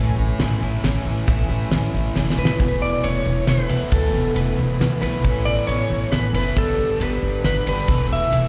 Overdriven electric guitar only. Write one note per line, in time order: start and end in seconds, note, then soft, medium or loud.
0.00 1.06 A2 medium
0.18 0.63 E4 medium
0.39 0.83 C#4 medium
0.63 1.48 E4 medium
0.84 1.70 C#4 medium
1.06 2.16 E3 medium
1.28 2.38 A2 medium
1.49 1.93 E4 medium
1.72 2.15 C#4 medium
1.94 2.60 E4 medium
2.16 2.60 C#4 medium
2.38 2.59 E3 medium
2.60 3.69 E2 medium
2.60 3.69 B2 medium
2.60 3.71 E3 medium
2.60 3.70 A3 medium
2.60 3.70 B3 medium
2.60 3.68 E4 medium
3.69 3.90 E2 medium
3.69 3.91 B2 medium
3.69 3.92 E3 medium
3.69 3.93 A3 medium
3.69 3.93 B3 medium
3.69 3.94 E4 medium
3.91 5.01 E2 medium
3.91 5.01 B2 medium
3.91 5.01 E3 medium
3.91 5.02 A3 medium
3.91 5.02 B3 loud
3.91 5.01 E4 loud
5.02 5.24 E2 medium
5.02 5.23 B2 medium
5.02 5.22 E3 medium
5.02 5.24 A3 medium
5.02 5.25 B3 medium
5.02 5.23 E4 medium
5.24 6.33 A2 medium
5.24 6.33 E3 medium
5.24 6.36 A3 medium
5.24 6.33 C#4 loud
5.24 6.33 E4 loud
6.34 6.56 A2 medium
6.34 6.56 E3 medium
6.34 6.57 A3 medium
6.34 6.56 C#4 medium
6.34 6.55 E4 medium
6.56 7.65 G2 medium
6.56 7.65 D3 medium
6.56 7.65 G3 medium
6.56 7.67 B3 medium
6.56 7.66 D4 loud
6.56 7.65 G4 medium
7.66 7.87 G2 medium
7.66 7.87 D3 medium
7.66 7.88 G3 medium
7.66 7.88 B3 medium
7.66 7.87 D4 medium
7.66 7.87 G4 medium
7.87 8.48 E2 medium
7.87 8.48 B2 medium
7.87 8.48 E3 medium
7.87 8.48 A3 medium
7.87 8.48 B3 medium
7.87 8.48 A4 loud